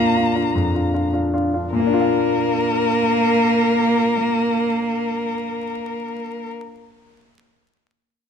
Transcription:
Already playing: grand piano A#2 D4 F4 F5, cello A#3, violin A#5
0.16 grand piano D4 F4 F5
0.35 grand piano D4 F4 F5
0.55 grand piano F2
0.74 grand piano D4 F4 F5
0.94 grand piano D4 F4 F5
1.13 grand piano D4 F4 F5
1.33 grand piano D4 F4 F5
1.54 grand piano D4 F4 F5
1.72 grand piano A#2, cello A#3, violin A#4
1.80 grand piano A#3
1.87 grand piano D4
1.94 grand piano F4
2.01 grand piano F5

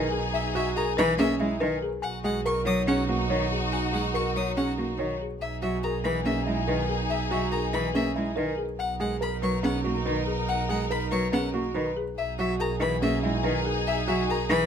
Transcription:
Already playing: double bass B1, string section D#4 G#4, grand piano A#4, marimba B4
0.12 marimba G#4
0.34 marimba E5, violin E5
0.55 grand piano F#4, violin E5
0.76 grand piano G#4, marimba A#4, violin A#5
0.97 cello E3, marimba B4, violin B5
1.18 cello A#3, grand piano C#4, marimba G#4, violin E5
1.39 cello G#3, grand piano E4
1.60 cello D#3, grand piano A#4, marimba B4
1.82 marimba G#4
2.02 double bass B1, string section D#4 F#4, violin F#5, marimba G#5
2.24 cello G#3, grand piano G#4, violin F#5
2.46 marimba A#4, grand piano A#4, violin C#6
2.65 cello F#3, marimba C#5, violin D#6
2.87 cello C#4, grand piano C#4, marimba G#4, violin F#5
3.08 cello A#3, grand piano F#4
3.29 cello D#3, grand piano C#5, marimba C#5
3.52 marimba G#4
3.72 violin F#5, marimba G#5
3.93 cello G#3, grand piano G#4, violin F#5
4.14 grand piano A#4, marimba A#4, violin C#6
4.35 cello F#3, marimba C#5, violin D#6
4.57 grand piano C#4, cello C#4, marimba G#4, violin F#5
4.77 cello A#3, grand piano F#4
4.98 cello D#3, grand piano C#5, marimba C#5
5.22 marimba G#4
5.41 double bass B1, string section D#4 G#4, violin E5, marimba E5
5.62 cello F#3, grand piano F#4, violin E5
5.83 grand piano G#4, marimba A#4, violin A#5
6.04 cello E3, marimba B4, violin B5
6.24 cello A#3, grand piano C#4, marimba G#4, violin E5
6.46 cello G#3, grand piano E4
6.68 cello D#3, grand piano A#4, marimba B4
6.89 marimba G#4
7.10 marimba E5, violin E5
7.31 cello F#3, grand piano F#4, violin E5
7.52 grand piano G#4, marimba A#4, violin A#5
7.73 cello E3, marimba B4, violin B5
7.94 cello A#3, grand piano C#4, marimba G#4, violin E5
8.15 cello G#3, grand piano E4
8.36 cello D#3, grand piano A#4, marimba B4
8.58 marimba G#4
8.78 double bass B1, string section D#4 A#4, marimba F#5, violin F#5
9.00 cello G#3, grand piano G#4, violin F#5
9.21 grand piano A#4, marimba A#4, violin B5
9.42 cello F#3, marimba B4, violin C#6
9.63 cello B3, grand piano C#4, marimba G#4, violin F#5
9.84 cello A#3, grand piano F#4
10.05 cello D#3, grand piano B4, marimba B4
10.27 marimba G#4
10.48 violin F#5, marimba F#5
10.69 cello G#3, grand piano G#4, violin F#5
10.90 grand piano A#4, marimba A#4, violin B5
11.11 cello F#3, marimba B4, violin C#6
11.33 cello B3, grand piano C#4, marimba G#4, violin F#5
11.53 cello A#3, grand piano F#4
11.74 cello D#3, grand piano B4, marimba B4
11.97 marimba G#4
12.17 double bass B1, string section D#4 G#4, violin E5, marimba E5
12.38 cello F#3, grand piano F#4, violin E5
12.60 grand piano G#4, marimba A#4, violin A#5
12.80 cello E3, marimba B4, violin B5
13.02 cello A#3, grand piano C#4, marimba G#4, violin E5
13.23 cello G#3, grand piano E4
13.43 cello D#3, grand piano A#4, marimba B4
13.65 marimba G#4
13.87 violin E5, marimba E5
14.08 cello F#3, grand piano F#4, violin E5
14.29 grand piano G#4, marimba A#4, violin A#5
14.50 cello E3, marimba B4, violin B5

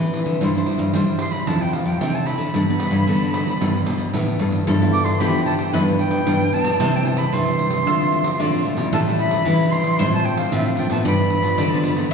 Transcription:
Already playing: nylon-string guitar E3 C4 E4 B4
0.02 pandeiro
0.14 nylon-string guitar C4 E4 B4, pandeiro
0.26 nylon-string guitar D3, pandeiro
0.41 nylon-string guitar G2 G3 D4 E4 C5, pandeiro
0.55 nylon-string guitar D4 E4 C5, pandeiro
0.66 pandeiro
0.78 nylon-string guitar G2, pandeiro
0.93 nylon-string guitar G3 D4 E4 C5, pandeiro
1.08 pandeiro
1.19 flute C6, pandeiro
1.31 flute B5, pandeiro
1.47 nylon-string guitar F2 F3 C4 E4 A4, flute A5, pandeiro
1.61 flute G5, pandeiro
1.73 flute F5, pandeiro
1.85 nylon-string guitar F2, flute G5, pandeiro
2.01 nylon-string guitar C3 C4 E4 A4, pandeiro
2.15 flute A5, pandeiro
2.26 nylon-string guitar C4 E4 A4, flute B5, pandeiro
2.38 nylon-string guitar D3, pandeiro
2.54 nylon-string guitar G2 G3 B3 D4 A4, pandeiro
2.68 nylon-string guitar B3 D4 A4, pandeiro
2.80 pandeiro
2.91 nylon-string guitar G2, pandeiro
3.07 nylon-string guitar D3 B3 D4 A4, pandeiro
3.22 pandeiro
3.34 pandeiro
3.47 pandeiro
3.61 nylon-string guitar G2 G3 B3 D4 A4, pandeiro
3.76 pandeiro
3.86 nylon-string guitar B2, pandeiro
3.98 pandeiro
4.13 nylon-string guitar A2 D3 B3 D4 A4, pandeiro
4.28 pandeiro
4.39 nylon-string guitar G2 B3 D4 A4, pandeiro
4.52 pandeiro
4.67 nylon-string guitar G2 F3 B3 E4, mandolin A4, pandeiro
4.81 nylon-string guitar F3 B3 E4, pandeiro
4.92 flute D6, pandeiro
5.04 flute C6, pandeiro
5.19 nylon-string guitar D3 F3 B3 E4, mandolin G4, flute B5, pandeiro
5.35 pandeiro
5.45 flute A5, pandeiro
5.57 flute G5, pandeiro
5.73 nylon-string guitar G2 E3 B3 D4, mandolin B4, flute E5, pandeiro
5.88 pandeiro
5.99 flute G5, pandeiro
6.11 pandeiro
6.26 nylon-string guitar G2 E3 B3 D4, pandeiro
6.41 pandeiro
6.52 nylon-string guitar E3 B3 D4, flute A5, pandeiro
6.64 nylon-string guitar B2, pandeiro
6.74 mandolin D5
6.80 nylon-string guitar C3 G3 B3 E4, mandolin C5, pandeiro
6.94 nylon-string guitar G3 E4, flute G5, pandeiro
7.05 flute A5, pandeiro
7.17 flute B5, pandeiro
7.33 nylon-string guitar G2 C3 G3 E4, flute C6, pandeiro
7.47 pandeiro
7.59 pandeiro
7.71 pandeiro
7.85 nylon-string guitar D3 A3 C4 F4, mandolin E5, pandeiro
8.00 pandeiro
8.12 pandeiro
8.24 pandeiro
8.40 nylon-string guitar A2 D3 A3 C4 F4, mandolin D5, pandeiro
8.54 pandeiro
8.65 nylon-string guitar A3 C4 F4, pandeiro
8.77 nylon-string guitar B2 G3 C#4 E4, pandeiro
8.93 nylon-string guitar A2, mandolin E5, flute A5, pandeiro
9.08 nylon-string guitar G3 C#4 E4, pandeiro
9.19 flute B5, pandeiro
9.31 pandeiro
9.45 nylon-string guitar E3 G3 C#4 E4, pandeiro
9.61 pandeiro
9.71 flute C6, pandeiro
9.84 pandeiro
9.99 nylon-string guitar A2 F3 C4 D4, mandolin C5, pandeiro
10.13 flute A5, pandeiro
10.25 flute G5, pandeiro
10.37 flute F5, pandeiro
10.52 nylon-string guitar A2 F3 C4 D4, flute E5, pandeiro
10.66 flute F5, pandeiro
10.77 nylon-string guitar F3 C4 D4, flute G5, pandeiro
10.90 nylon-string guitar A2 F3 B3 D4, flute A5, pandeiro
11.05 nylon-string guitar G2, mandolin D5, flute B5, pandeiro
11.19 pandeiro
11.30 pandeiro
11.43 nylon-string guitar F3 B3 D4, pandeiro
11.58 nylon-string guitar D3, mandolin D5, pandeiro
11.72 nylon-string guitar F3 B3 D4, pandeiro
11.84 pandeiro
11.97 nylon-string guitar F3 B3 D4, pandeiro

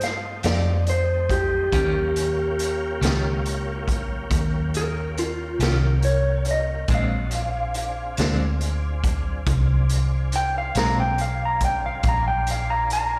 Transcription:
Already playing: fingered electric bass G2, tonewheel organ A3 C4 D#4 G4
0.01 clean electric guitar F5, snare, closed hi-hat
0.43 fingered electric bass F2, clean electric guitar F3 A3 D#4 G4 D5, snare, closed hi-hat
0.87 clean electric guitar C5, closed hi-hat
1.30 clean electric guitar G4, kick, closed hi-hat
1.72 fingered electric bass D#2, clean electric guitar D#3 C#4 F4 G4, tonewheel organ A#3 C#4 F4 G4, kick, closed hi-hat
2.16 closed hi-hat
2.59 closed hi-hat
3.01 fingered electric bass C#2, clean electric guitar D#3 C#4 F4 G4, snare, closed hi-hat
3.46 closed hi-hat
3.88 kick, closed hi-hat
4.30 fingered electric bass D#2, kick, closed hi-hat
4.74 clean electric guitar A#4, closed hi-hat
5.18 clean electric guitar F4, closed hi-hat
5.59 fingered electric bass C2, clean electric guitar D#3 C#4 F4 G4 A#4, snare, closed hi-hat
6.03 clean electric guitar C#5, closed hi-hat
6.45 closed hi-hat
6.51 clean electric guitar D#5
6.88 fingered electric bass A#1, clean electric guitar A#2 G#3 C4 D4, kick, closed hi-hat
6.92 tonewheel organ C#4 D#4 F#4 A4, clean electric guitar F5
7.31 tonewheel organ C4 D4 F4 G#4, closed hi-hat
7.74 closed hi-hat
8.17 fingered electric bass D2, clean electric guitar A#2 G#3 C4 D4, snare, closed hi-hat
8.61 closed hi-hat
9.04 kick, closed hi-hat
9.46 fingered electric bass C2, kick, closed hi-hat
9.89 closed hi-hat
10.32 clean electric guitar G5, closed hi-hat
10.58 clean electric guitar F5
10.75 fingered electric bass B1, clean electric guitar A#2 G#3 C4 D4 A#5, snare, closed hi-hat
11.00 clean electric guitar G5
11.18 clean electric guitar F5, closed hi-hat
11.45 clean electric guitar A#5
11.61 kick, closed hi-hat
11.65 clean electric guitar G5
11.86 clean electric guitar F5
12.03 fingered electric bass A#1, tonewheel organ D4 F4 G#4 C5, kick, closed hi-hat
12.09 clean electric guitar A#5
12.28 clean electric guitar G5
12.47 closed hi-hat
12.51 clean electric guitar F5
12.70 clean electric guitar A#5
12.90 clean electric guitar A#5, closed hi-hat

